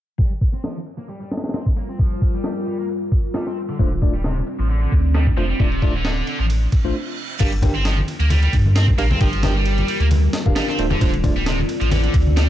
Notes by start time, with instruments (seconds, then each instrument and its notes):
0.19 distorted electric guitar G3, ambient pad G3 F4 A#4, kick, ride
0.31 ride
0.41 kick, ride
0.53 distorted electric guitar C4
0.64 distorted electric guitar F3, snare, ride
0.87 ride
0.98 distorted electric guitar A#3, ride
1.09 distorted electric guitar G3, ride
1.21 distorted electric guitar G3, ride
1.31 snare, ride
1.37 snare, ride
1.44 snare, ride
1.49 snare, ride
1.54 distorted electric guitar C4, snare, ride
1.66 kick
1.77 distorted electric guitar A#3, ride
1.89 distorted electric guitar C4
1.99 distorted electric guitar F3, kick, ride
2.12 ride
2.22 kick, ride
2.34 distorted electric guitar G3
2.44 snare, ride
2.67 distorted electric guitar G3, ride
2.79 distorted electric guitar A#3
2.89 ride
3.12 kick, ride
3.34 distorted electric guitar G3, snare, ride
3.47 distorted electric guitar C4, snare
3.57 ambient pad C4 D5, ride
3.69 distorted electric guitar D3
3.79 sub bass D1, distorted electric guitar D3, tine electric piano A3 D4 F4 C5, kick, ride
3.91 ride
4.02 tine electric piano A3 D4 F4 D5, kick, ride
4.14 distorted electric guitar G3
4.24 distorted electric guitar C3, snare, ride
4.47 ride
4.59 sub bass A1, distorted electric guitar F3, ride
4.70 distorted electric guitar D3, ride
4.82 distorted electric guitar D3, ride
4.92 sub bass D2, kick, ride
5.15 distorted electric guitar G3, snare, ride
5.27 kick
5.37 sub bass F1, distorted electric guitar F3, tine electric piano A3 D4 F4 C5, ride
5.50 distorted electric guitar G3
5.60 sub bass D1, distorted electric guitar C3, tine electric piano A3 D4 F4 D5, kick, ride
5.72 ride
5.82 tine electric piano A3 D4 F4 D5, kick, ride
5.94 distorted electric guitar D3
6.05 snare, ride
6.27 distorted electric guitar D3, ride
6.40 sub bass A1, distorted electric guitar F3
6.50 ride, reverse cymbal
6.72 kick, ride
6.84 sub bass A1, tine electric piano A3 D4 F4 C5
7.40 sub bass G1, distorted electric guitar G3, ambient pad G3 F4 A#4, tine electric piano D4 G4 A#4 F5, kick, crash, ride
7.52 ride
7.62 tine electric piano D4 G4 A#4 G5, kick, ride, high conga
7.75 distorted electric guitar C4
7.85 distorted electric guitar F3, snare, ride
7.98 high conga
8.08 ride
8.20 sub bass D2, distorted electric guitar A#3, ride
8.30 distorted electric guitar G3, ride, high conga
8.43 distorted electric guitar G3, ride
8.53 sub bass G2, kick, ride
8.66 high conga
8.76 distorted electric guitar C4, snare, ride
8.88 kick
8.98 sub bass A#1, distorted electric guitar A#3, tine electric piano D4 G4 A#4 F5, ride
9.11 distorted electric guitar C4, high conga
9.21 sub bass G1, distorted electric guitar F3, tine electric piano D4 G4 A#4 G5, kick, ride
9.33 ride
9.43 tine electric piano D4 G4 A#4 G5, snare, ride, high conga
9.56 distorted electric guitar G3
9.66 ride
9.78 ride, high conga
9.88 distorted electric guitar G3, ride
10.00 sub bass D2, distorted electric guitar A#3, ride
10.11 ride, high conga
10.33 snare, ride
10.46 sub bass D1, tine electric piano D4 G4 A#4 F5, kick, high conga
10.56 distorted electric guitar G3, snare, ride
10.68 distorted electric guitar C4, snare
10.78 sub bass D1, tine electric piano A3 D4 F4 C5, ambient pad C4 D5, ride
10.91 distorted electric guitar D3, high conga
11.01 sub bass D1, distorted electric guitar D3, tine electric piano A3 D4 F4 C5, kick, ride
11.14 ride
11.24 tine electric piano A3 D4 F4 D5, kick, ride, high conga
11.36 distorted electric guitar G3
11.46 distorted electric guitar C3, snare, ride
11.59 high conga
11.69 ride
11.81 sub bass A1, distorted electric guitar F3, ride
11.91 distorted electric guitar D3, ride, high conga
12.04 distorted electric guitar D3, ride
12.14 sub bass D2, kick, ride
12.27 high conga
12.37 distorted electric guitar G3, snare, ride